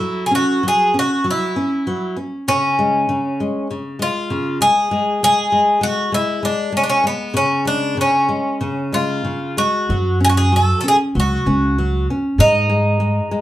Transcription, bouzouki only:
0.00 0.26 E4 medium
0.26 0.32 G#4 medium
0.35 0.66 F#4 medium
0.68 0.98 G#4 medium
0.99 1.25 F#4 medium
1.31 2.16 E4 medium
2.48 3.67 C#4 medium
4.02 4.58 F4 medium
4.62 5.23 G#4 medium
5.24 5.83 G#4 medium
5.83 6.11 F#4 medium
6.14 6.45 E4 medium
6.45 6.72 D4 medium
6.77 6.82 C#4 medium
6.83 6.89 D4 medium
6.90 7.04 C#4 medium
7.07 7.34 B3 medium
7.37 7.65 C#4 medium
7.67 7.96 D4 medium
8.01 8.97 C#4 medium
8.94 9.58 F4 medium
9.58 10.18 F#4 medium
10.24 10.29 G#4 medium
10.29 10.36 F#4 medium
10.37 10.54 G#4 medium
10.56 10.79 A4 medium
10.81 10.86 A4 medium
10.88 10.96 G#4 medium
11.20 12.06 F#4 medium
12.40 13.41 D#4 medium

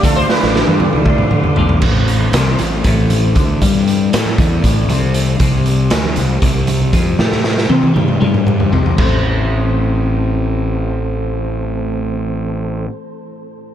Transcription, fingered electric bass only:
0.04 0.23 D2 loud
0.43 0.62 A1 medium
0.68 0.88 G2 loud
0.94 1.23 D2 medium
1.32 1.51 D3 loud
1.58 1.77 B1 medium
1.83 2.30 A1 medium
2.33 2.57 C2 medium
2.60 2.83 A1 medium
2.85 3.32 A1 loud
3.36 3.60 D2 loud
3.62 4.09 G2 medium
4.14 4.37 A2 medium
4.39 4.62 E2 medium
4.64 4.87 A1 loud
4.88 5.36 C2 loud
5.40 5.88 C2 medium
5.92 6.16 D2 loud
6.17 6.41 C2 medium
6.42 6.90 C2 loud
6.94 7.17 F2 medium
7.19 7.67 A2 medium
7.70 7.94 C3 medium
7.96 8.20 G2 medium
8.22 8.69 G2 medium
8.72 8.96 C2 medium
8.99 12.86 A1 medium

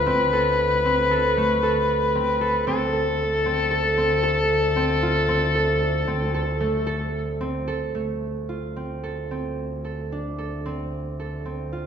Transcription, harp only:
0.00 2.33 F4 medium
0.00 0.32 A4 medium
0.06 0.85 C4 medium
0.33 1.11 A4 medium
0.85 2.15 C4 medium
1.11 1.63 A4 medium
1.37 4.70 A3 medium
1.63 2.41 A4 medium
2.15 2.67 C4 medium
2.41 2.93 A4 medium
2.67 3.45 C4 medium
2.93 3.71 A4 medium
3.46 3.97 C4 medium
3.71 4.23 A4 medium
3.97 4.76 C4 medium
4.23 5.55 A4 medium
4.76 5.28 C4 medium
5.03 7.55 F4 medium
5.28 6.07 C4 medium
5.55 6.34 A4 medium
6.07 7.40 C4 medium
6.34 6.86 A4 medium
6.60 7.94 A3 medium
6.87 7.67 A4 medium
7.41 8.76 C4 medium
7.68 9.03 A4 medium
7.95 11.28 A3 medium
8.49 11.01 F4 soft
8.76 9.31 C4 soft
9.03 9.84 A4 medium
9.31 10.65 C4 soft
9.85 10.38 A4 soft
10.12 11.87 D4 soft
10.38 11.19 A4 medium
10.66 11.45 C4 medium
11.20 11.87 A4 soft
11.45 11.87 C4 soft
11.73 11.87 F4 medium

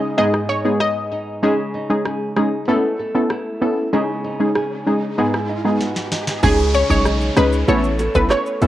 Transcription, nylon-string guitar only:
0.00 0.24 C#3 medium
0.00 0.49 D#4 medium
0.00 2.05 G#4 medium
0.18 1.49 G#2 medium
0.49 1.11 D#4 medium
0.81 1.49 B3 medium
1.12 1.49 D#4 medium
1.43 2.68 C#3 medium
1.74 2.36 D#4 medium
2.06 2.74 G#4 medium
2.37 2.74 D#4 medium
2.68 3.93 A3 medium
2.99 3.61 A4 medium
3.31 3.99 E4 medium
3.62 3.99 A4 medium
3.93 5.24 C#3 medium
4.24 4.87 D#4 medium
4.56 7.71 G#4 medium
4.87 5.49 D#4 medium
5.18 6.49 G#2 medium
5.49 6.11 D#4 medium
5.81 6.49 B3 medium
6.12 6.49 D#4 medium
6.43 7.68 C#3 medium
6.74 7.36 C#4 medium
7.06 7.74 D#4 medium
7.37 8.67 C#4 medium
7.68 8.67 A3 medium
7.99 8.61 A4 medium
8.31 8.67 C#5 medium
8.62 8.67 A4 medium

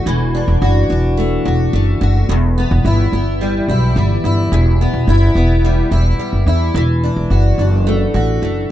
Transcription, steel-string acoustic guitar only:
0.00 1.16 A3 medium
0.00 0.33 D4 medium
0.00 0.61 F#4 medium
0.07 3.57 E3 medium
0.35 0.89 D4 medium
0.62 1.44 F#4 medium
0.90 2.35 D4 medium
1.17 1.72 A3 medium
1.45 2.00 F#4 medium
1.73 2.35 A3 medium
2.01 2.35 F#4 medium
2.29 4.52 E2 medium
2.58 3.12 B3 medium
2.86 3.68 E4 medium
3.13 4.80 B3 medium
3.41 3.96 G3 medium
3.70 4.24 E4 medium
3.97 5.63 G3 medium
4.25 5.08 E4 medium
4.53 6.75 E2 medium
4.81 5.35 B3 medium
5.09 5.91 E4 medium
5.36 6.81 B3 medium
5.65 6.18 G3 medium
5.92 6.46 E4 medium
6.19 6.81 G3 medium
6.48 6.81 E4 medium
6.76 8.71 E3 medium
7.04 7.59 D4 medium
7.31 8.14 F#4 medium
7.59 8.71 D4 medium
7.87 8.42 A3 medium
8.14 8.70 F#4 medium
8.43 8.71 A3 medium

